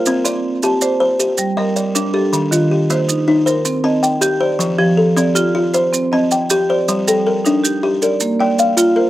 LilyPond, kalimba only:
\new Staff \with { instrumentName = "Kalimba" } { \time 12/8 \key c \dorian \tempo 4. = 106 << { bes'8 d''4. d''4 g'4 ees''8 d''4 g'8~ | g'8 f'8 g'4. r8 c''4 a''8 g''4 c''8~ | c''8 g'8 a'4 g'4 c''4 a''8 g''4 c''8~ | c''8 a'8 bes'4. r8 bes'4 g''8 f''4 bes'8 | } \\ { c'4 r8 g'4 c''8 r4 g4 d'4 | ees4 r8 bes4 ees'8 r4 c'4 g'4 | f4 r8 c'4 f'8 r4 c'4 g'4 | g4 r8 d'4 g'8 r4 bes4 f'4 | } >> }